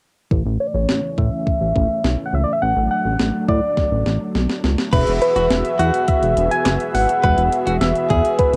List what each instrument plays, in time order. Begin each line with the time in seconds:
0.31 analog synth bass A1, string machine E3 A3 C#4, kick
0.46 analog synth bass A1
0.60 soft synth lead C#5
0.67 soft synth lead D5
0.74 analog synth bass A1, soft synth lead C#5
0.89 analog synth bass A1, snare
1.18 analog synth bass A2, soft synth lead E5, kick
1.47 kick
1.61 analog synth bass A1
1.76 analog synth bass A1, kick
2.04 analog synth bass B1, snare
2.26 soft synth lead F#5
2.33 analog synth bass C#2, soft synth lead E5
2.44 soft synth lead D5
2.53 soft synth lead E5
2.62 analog synth bass A1, string machine F#3 D4, soft synth lead F#5
2.76 analog synth bass A1
2.91 soft synth lead F#5
3.05 analog synth bass A1
3.20 analog synth bass A1, snare
3.49 analog synth bass A2, soft synth lead D5, kick
3.77 kick, snare
3.92 analog synth bass A1
4.06 analog synth bass A1, snare
4.35 analog synth bass B1, snare
4.50 snare
4.64 analog synth bass C#2, snare
4.78 snare
4.93 analog synth bass E1, string machine E3 B3 F#4 G#4, analog polysynth F#4 G#4 B4 E5, clean electric guitar B4, kick, closed hi-hat, crash
5.07 analog synth bass E1, closed hi-hat
5.22 soft synth lead B4, closed hi-hat
5.36 analog synth bass E1, clean electric guitar F#4, closed hi-hat
5.50 analog synth bass E1, snare, closed hi-hat
5.65 closed hi-hat
5.79 analog synth bass E2, clean electric guitar F#4, soft synth lead F#5, closed hi-hat
5.94 closed hi-hat
6.08 soft synth lead E5, kick, closed hi-hat
6.23 analog synth bass E1, closed hi-hat
6.37 analog synth bass E1, closed hi-hat
6.51 soft synth lead G#5, closed hi-hat
6.66 analog synth bass F#1, snare, clap, closed hi-hat
6.80 closed hi-hat
6.95 analog synth bass G#1, soft synth lead F#5, open hi-hat
7.09 closed hi-hat
7.23 analog synth bass E1, string machine E4, clean electric guitar B4, soft synth lead F#5, kick, closed hi-hat
7.38 analog synth bass E1, closed hi-hat
7.52 closed hi-hat
7.67 analog synth bass E1, clean electric guitar F#4, closed hi-hat
7.81 analog synth bass E1, soft synth lead E5, snare, closed hi-hat
7.95 closed hi-hat
8.10 analog synth bass E2, clean electric guitar G#4, kick, closed hi-hat
8.25 closed hi-hat
8.39 soft synth lead B4, kick, closed hi-hat